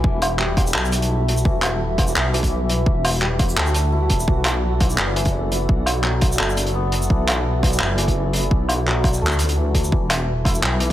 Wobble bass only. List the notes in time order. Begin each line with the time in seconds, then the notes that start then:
0.04 E1
0.75 B1
1.45 E1
2.16 B1
2.86 E1
3.57 D2
4.10 E1
4.28 B1
4.98 F#1
5.69 B1
6.40 F#1
7.10 B1
7.81 F#1
8.51 B1
9.22 D2
9.92 E1
10.63 B1